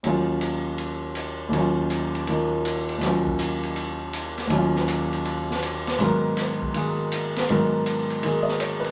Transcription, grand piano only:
X:1
M:4/4
L:1/8
Q:"Swing" 1/4=161
K:Ebm
V:1 name="Grand piano"
z8 | z8 | z8 | z8 |
z8 | z4 z e d c |]
V:2 name="Grand piano" clef=bass
[E,,E,G,DF]8 | [E,,E,G,DF]4 [E,F,B,E]4 | [E,,E,G,DF]8 | [E,,E,G,DF]8 |
[A,,E,G,CB]4 [E,B,A]4 | [A,,E,G,CB]4 [E,B,A]4 |]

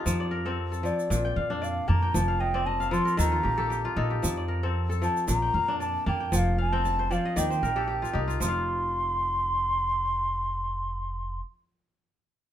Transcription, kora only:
X:1
M:4/4
L:1/16
Q:"Swing 16ths" 1/4=115
K:Fmix
V:1 name="Kora"
F d B A2 A3 z g f2 d2 a g- | g f e d e f A B A F G A G F A G- | G d B A2 A3 z g f2 d2 a g- | g z f g a c d e d c B A G F G F- |
F z12 z3 | z16 |]
V:2 name="Kora"
F,2 z C2 z F,2 B,,2 z D2 z B,2 | F,2 z C2 z F,2 E,2 z G2 z E2 | F,2 z C2 z F,2 B,,2 z D2 z B,2 | F,2 z C2 z F,2 E,2 z G2 z E2 |
[F,Ff]16- | [F,Ff]16 |]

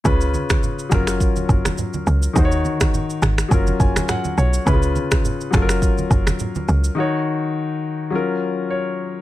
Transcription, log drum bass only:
X:1
M:4/4
L:1/16
Q:"Swing 16ths" 1/4=104
K:F#
V:1 name="Log drum bass" clef=bass
C,,3 z3 F,,,4 F,,,2 z2 C,,2 | D,,3 z3 G,,,2 F,,,2 F,,,2 z2 B,,,2 | C,,3 z3 F,,,4 F,,,2 z2 C,,2 | z16 |]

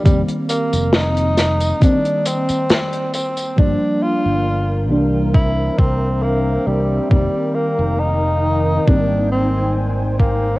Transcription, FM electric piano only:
X:1
M:4/4
L:1/8
Q:"Swing 16ths" 1/4=68
K:Fdor
V:1 name="FM electric piano" clef=bass
[E,G,B,C]4 [E,G,B,C]4 | [F,G,B,D]3 [=E,G,B,D]4- [E,G,B,D] | [E,G,B,C]4 [E,G,B,C]4 |]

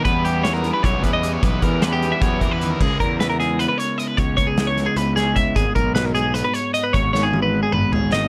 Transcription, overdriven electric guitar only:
X:1
M:7/8
L:1/8
Q:1/4=152
K:C#dor
V:1 name="Overdriven electric guitar"
[E,=G,B,E] [G,B,E] [E,G,B,E] [E,G,B,E] [E,G,B,E] [E,G,B,E] [E,G,B,E] | [E,=G,B,E] [G,B,E] [E,G,B,E] [E,G,B,E] [E,G,B,E] [E,G,B,E] [E,G,B,E] | z6 z | z6 z |
z6 z | z6 z |]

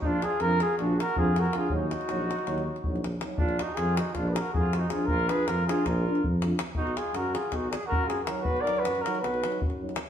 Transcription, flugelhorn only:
X:1
M:9/8
L:1/16
Q:3/8=107
K:Bbphr
V:1 name="Flugelhorn"
F2 A2 B2 A2 G2 B2 A2 B2 A2 | G12- G2 z4 | F2 G2 A2 G2 F3/2 c/2 B2 A2 G2 A2 | B2 c2 B2 A2 B4- B/2 z4 z3/2 |
^F2 A2 B2 A2 F3/2 =d/2 z2 B2 A2 B2 | =B2 =d2 B2 _B2 =B4- B/2 z4 z3/2 |]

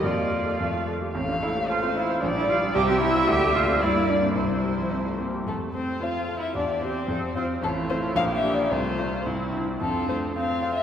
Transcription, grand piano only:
X:1
M:2/4
L:1/16
Q:1/4=111
K:Fmix
V:1 name="Grand piano"
F,, F B A F,, F A G | [K:F] A,,, F A G A C F c | B,,, D G F C,, C G F | D,, A, D C G,, B, D C |
C,, C G, F, C G, C G | F,,2 A,2 C2 A2 | E,,2 [CG]2 F,,2 [CF]2 | A,,,2 [CF]2 B,,,2 [DG]2 |
C,,2 [CF]2 C,,2 [CE]2 | F,,2 A,2 C2 F2 |]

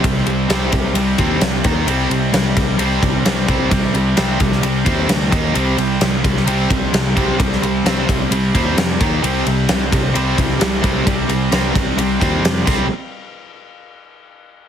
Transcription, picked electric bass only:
X:1
M:4/4
L:1/8
Q:1/4=131
K:Cm
V:1 name="Picked electric bass" clef=bass
C,, C,, C,, C,, C,, E,, C,, E,, | C,, C,, C,, C,, C,, C,, C,, C,, | C,, C,, C,, C,, C,, E,, D,, E,, | C,, C,, C,, C,, C,, C,, C,, C,, |
C,, C,, C,, C,, C,, E,, F,, E,, | C,, C,, C,, C,, C,, C,, C,, C,, | C,, C,, C,, C,, C,, E,, F,, C,, | z8 |]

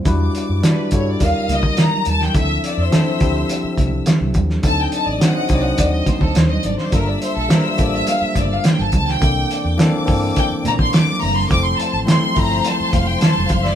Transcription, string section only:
X:1
M:4/4
L:1/16
Q:1/4=105
K:Dm
V:1 name="String section"
[dd']6 z2 [_e_e']6 z2 | [ee']12- [ee']2 z2 | [_e_e']12- [ee']3/2 z/2 [Aa]/2 [Bb]/2 [cc']/2 [dd']/2 | [ee']12- [ee']2 z2 |
[dd']12- [dd']/2 z/2 [Dd]/2 [Ee]/2 [Ff]/2 [Gg]/2 [Aa]/2 [Bb]/2 | [cc']16 |]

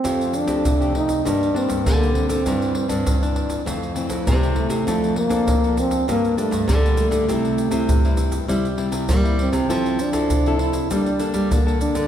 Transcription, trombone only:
X:1
M:4/4
L:1/8
Q:1/4=100
K:F
V:1 name="Trombone"
C D2 _E D C B, C- | C3 z3 G, A,- | A, B,2 C B, A, G, A,- | A,3 z3 B, C- |
C D2 E D z B, D |]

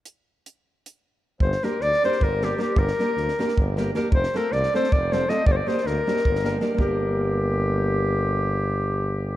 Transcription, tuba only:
X:1
M:7/8
L:1/8
Q:1/4=156
K:Gm
V:1 name="Tuba" clef=bass
z6 z | G,,, z D,, z G,,,3 | G,,, z D,, z G,,,3 | F,,, z C,, z F,,,3 |
G,,, z D,, z G,,,3 | G,,,6- G,,,- | G,,,6- G,,, |]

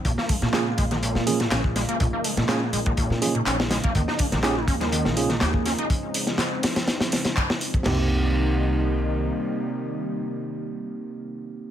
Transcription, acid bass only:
X:1
M:4/4
L:1/16
Q:"Swing 16ths" 1/4=123
K:Cphr
V:1 name="Acid bass" clef=bass
B,, B, A, B,, D B, A, E, B,,2 A, B,, D z A, B, | B,, B, A, B,, D B, A, E, B,,2 A, B,, D z A, B, | E, E D E, G E D A, E,2 D E, G z D E | z16 |
C,2 z12 z2 | z16 |]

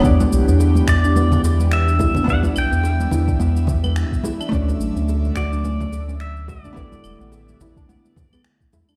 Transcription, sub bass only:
X:1
M:4/4
L:1/16
Q:"Swing 16ths" 1/4=107
K:Edor
V:1 name="Sub bass" clef=bass
E,, z B,,, E,,3 E,,4 E,,4- E,, z | E,, z B,,, E,,3 E,, z E,,4- E,, z3 | D,, z A,,, D,,3 D,,4 D,,4- D,, z | A,,, z E,,, A,,,3 A,,, z6 z E,, z |]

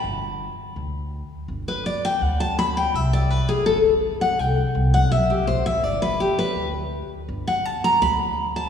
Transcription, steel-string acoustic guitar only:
X:1
M:4/4
L:1/8
Q:1/4=166
K:Glyd
V:1 name="Steel-string acoustic guitar"
b4 z4 | z B d g f a b g | e d B ^G A z2 f | g3 f e G =c e |
d B G B2 z3 | z f a _b =b3 a |]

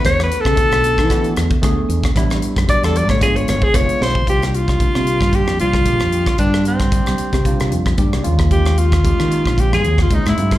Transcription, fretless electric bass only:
X:1
M:4/4
L:1/16
Q:"Swing 16ths" 1/4=113
K:E
V:1 name="Fretless electric bass" clef=bass
E,,2 z C, z B,,,2 E,3 E,, z =D,, z E,, z | A,,,2 z F,, z E,,2 A,, =G,,,2 G,,, z =F,,, z B,,, z | [K:Cm] C,,4- C,, C,2 G,,2 F,, C,,2 B,,, F,,2 z | G,,4- G,, C,, z C,2 C, F,,2 G,, C,, E,,2- |
E,,4- E,, E,2 B,,,2 G,, E,,2 _D,, A,, G,,2 |]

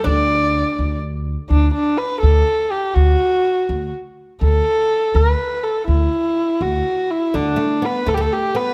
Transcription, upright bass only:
X:1
M:6/8
L:1/8
Q:3/8=82
K:none
V:1 name="Upright bass" clef=bass
D,,3 D,,3 | D,, z2 D,, z2 | D,, z2 D,, z2 | D,, z2 D,, z2 |
D,, z2 D,, z2 | D,, z2 D,, z2 |]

